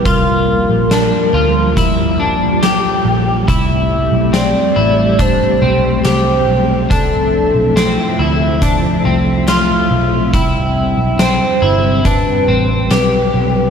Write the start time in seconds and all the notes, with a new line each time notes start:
Already playing: G3
0.05 C2 F3 A#3 F4 A#4, kick, closed hi-hat
0.69 A#1
0.91 D4, snare, closed hi-hat
1.33 D2 F4
1.77 E4, kick, closed hi-hat
2.20 C2 D4
2.63 G4, snare, closed hi-hat
3.05 A#1
3.48 C2 G3 A3 C4 E4 G4, kick, closed hi-hat
4.12 B1
4.33 C4 D5, snare, closed hi-hat
4.76 A1 E4
5.19 D4 C5, kick, closed hi-hat
5.62 B1 C4
6.05 C2 G4 C5, snare, closed hi-hat
6.48 B1
6.90 C2 F3 A3 D4 A4 E5, kick, closed hi-hat
7.55 B1
7.76 C4, snare, closed hi-hat
8.19 D2 E4
8.62 D4, kick, closed hi-hat
9.05 C2 C4
9.48 F4, snare, closed hi-hat
9.91 B1
10.34 C2 G3 C4 E4 G5, kick, closed hi-hat
10.98 B1
11.19 C4 C5, snare, closed hi-hat
11.62 G1 E4
12.05 D4 B4, kick, closed hi-hat
12.48 A1 C4
12.91 B1 G4 B4, snare, closed hi-hat
13.34 B1